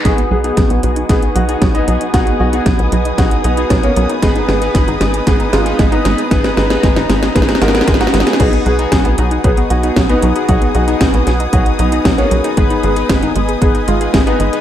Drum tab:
CC |--------------------------------|--------------------------------|--------------------------------|--------------------------------|
HH |x-x---x-x-x-x-x-x-x-x-x-x-x-x-x-|x-x---x-x-x-x-x-x-x-x-x-x-x-x-x-|x-x---x-x-x-x-x-x-x-x-x-x-x-x-x-|x-x---x-x-x-x-x-x-x-x-x-x-x-x-x-|
SD |o-------o-------o-------o-------|o-------o-------o-------o-------|o---o---o---o---o---o---o---o---|o-o-o-o-o-o-o-o-oooooooooooooooo|
BD |o-------o-------o-------o-------|o-------o-------o-------o-------|o-------o-------o-------o-------|o-------o-------o-------o-------|

CC |x-------------------------------|--------------------------------|--------------------------------|
HH |x-x-x-x-x-x-x-x-x-x-x-x-x-x-x-x-|x-x-x-x-x-x-x-x-x-x-x-x-x-x-x-x-|x-x-x-x-x-x-x-x-x-x-x-x-x-x-x-x-|
SD |--------o---------------o-------|--------o---o-----------o-------|--------o---------------o-------|
BD |o-------o-------o-------o-------|o-------o-------o-------o-------|o-------o-------o-------o-------|